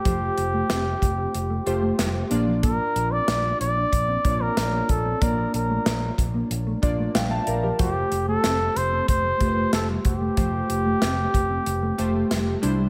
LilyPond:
<<
  \new Staff \with { instrumentName = "Flugelhorn" } { \time 4/4 \key f \major \tempo 4 = 93 g'2.~ g'8 r8 | bes'8. d''8. d''4~ d''16 bes'8. a'8 | bes'8 bes'4 r2 r8 | g'8. a'8. c''8 c''4 a'8 g'8~ |
g'2.~ g'8 r8 | }
  \new Staff \with { instrumentName = "Synth keys" } { \time 4/4 \key f \major << { r1 | r1 | r2 r8 d''8 <e'' f'' g''>16 <d'' f'' a''>16 <bes' d'' bes''>16 <g' bes'>16~ | <g' bes'>16 r2. r8. |
r1 | } \\ { <a f' g' c''>4. r4 <a f' g' c''>4 <bes d' f' d''>8~ | <bes d' f' d''>4 r4. <bes d' f' des'' d''>4 r8 | <bes d' f' d''>4. r4 <bes d' f' d''>4 r8 | <a f' g' c''>4. r4 <a f' g' b' c''>4 r8 |
<a f' g' c''>4. r4 <a f' g' c''>4 <g d' e' c''>8 | } >> }
  \new Staff \with { instrumentName = "Clean electric guitar" } { \time 4/4 \key f \major f16 r8 a16 c'16 r8 c'16 r16 a16 r16 a16 g16 r8 f16 | bes16 r8 c'16 d'16 r8 d'16 r16 c'16 r16 c'16 r16 bes16 r16 c'16 | bes16 r8 a16 bes16 r8 bes16 r16 a16 r16 a16 g16 r8 f16 | f16 r8 a16 c'16 r8 c'16 r16 a16 r16 a16 r16 g16 r16 a16 |
f16 r8 a16 c'16 r8 c'16 r16 a16 r16 a16 g16 r8 g16 | }
  \new Staff \with { instrumentName = "Fretless electric bass" } { \clef bass \time 4/4 \key f \major f,,8 f,,8 f,,8 f,,8 f,,8 f,,8 f,,8 bes,,8~ | bes,,8 bes,,8 bes,,8 bes,,8 bes,,8 bes,,8 bes,,8 bes,,8 | bes,,8 bes,,8 bes,,8 bes,,8 bes,,8 bes,,8 bes,,8 bes,,8 | f,,8 f,,8 f,,8 f,,8 f,,8 f,,8 f,,8 f,,8 |
f,,8 f,,8 f,,8 f,,8 f,,8 f,,8 f,,8 c,8 | }
  \new DrumStaff \with { instrumentName = "Drums" } \drummode { \time 4/4 <hh bd>8 hh8 <hh sn>8 <hh bd>8 hh8 hh8 <hh sn>8 hh8 | <hh bd>8 hh8 <hh sn>8 hh8 <hh bd>8 <hh bd>8 <hh sn>8 <hh bd>8 | <hh bd>8 hh8 <hh sn>8 <hh bd>8 hh8 <hh bd>8 <hh sn>8 hh8 | <hh bd>8 hh8 <hh sn>8 hh8 <hh bd>8 <hh bd>8 <hh sn>8 <hh bd>8 |
<hh bd>8 hh8 <hh sn>8 <hh bd>8 hh8 hh8 <hh sn>8 hh8 | }
>>